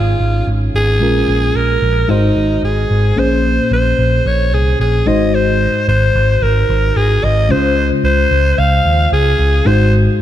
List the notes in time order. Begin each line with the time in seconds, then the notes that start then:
Already playing: G#1 G#2 G#3 C#4 D#4 F4 C#5
0.20 G#1
0.47 G#1
0.74 G#1 G#4
1.00 A#1 A#2 G#3 C#4 F4 A#4
1.28 A#1
1.55 A#1 A#4
1.82 A#1
2.08 G#1 G#2 G#3 D#4 F#4 C5
2.37 G#1
2.63 G#1 G#4
2.91 G#1
3.16 A#1 A#2 A#3 C#4 G#4 C5
3.71 A#1 C5
3.99 A#1
4.26 A#1 C#5
4.53 C2 G#4
4.80 A#1 G#4
5.06 G#1 G#2 G#3 D#4 F#4 C5 D#5
5.35 C5
5.88 G#1 C5
6.15 G#1
6.42 G#1 A#4
6.69 G#1
6.96 G#1 G#4
7.24 G#1 D#5
7.49 C#2 C#3 G#3 C#4 F4 C5
8.04 C#2 C5
8.31 C#2
8.59 C#2 F5
8.86 D#2
9.12 C#2 G#4
9.39 C#2
9.65 G#1 G#2 G#3 D#4 F#4 C5